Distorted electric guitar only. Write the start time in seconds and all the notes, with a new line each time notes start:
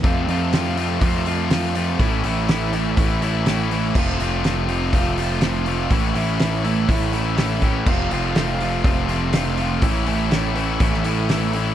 0.03 F2 C3 F3 A3 C4 F4
0.28 F2 C3 F3 A3 C4 F4
0.52 F2 C3 F3 A3 C4 F4
0.76 F2 C3 F3 A3 C4 F4
1.02 F2 C3 F3 A3 C4 F4
1.26 F2 C3 F3 A3 C4 F4
1.51 F2 C3 F3 A3 C4 F4
1.75 F2 C3 F3 A3 C4 F4
1.99 A2 E3 A3 C#4 E4
2.25 A2 E3 A3 C#4 E4
2.49 A2 E3 A3 C#4 E4
2.73 A2 E3 A3 C#4 E4
2.98 A2 E3 A3 C#4 E4
3.22 A2 E3 A3 C#4 E4
3.46 A2 E3 A3 C#4 E4
3.71 A2 E3 A3 C#4 E4
3.96 F2 C3 F3 A3 C4 F4
4.20 F2 C3 F3 A3 C4 F4
4.45 F2 C3 F3 A3 C4 F4
4.67 F2 C3 F3 A3 C4 F4
4.93 F2 C3 F3 A3 C4 F4
5.17 F2 C3 F3 A3 C4 F4
5.42 F2 C3 F3 A3 C4 F4
5.66 F2 C3 F3 A3 C4 F4
5.91 A2 E3 A3 C#4 E4
6.14 A2 E3 A3 C#4 E4
6.38 A2 E3 A3 C#4 E4
6.63 A2 E3 A3 C#4 E4
6.88 A2 E3 A3 C#4 E4
7.12 A2 E3 A3 C#4 E4
7.36 A2 E3 A3 C#4 E4
7.62 A2 E3 A3 C#4 E4
7.87 F2 C3 F3 A3 C4 F4
8.11 F2 C3 F3 A3 C4 F4
8.36 F2 C3 F3 A3 C4 F4
8.60 F2 C3 F3 A3 C4 F4
8.83 F2 C3 F3 A3 C4 F4
9.08 F2 C3 F3 A3 C4 F4
9.33 F2 C3 F3 A3 C4 F4
9.57 F2 C3 F3 A3 C4 F4
9.82 A2 E3 A3 C#4 E4
10.06 A2 E3 A3 C#4 E4
10.30 A2 E3 A3 C#4 E4
10.55 A2 E3 A3 C#4 E4
10.80 A2 E3 A3 C#4 E4
11.04 A2 E3 A3 C#4 E4
11.29 A2 E3 A3 C#4 E4
11.54 A2 E3 A3 C#4 E4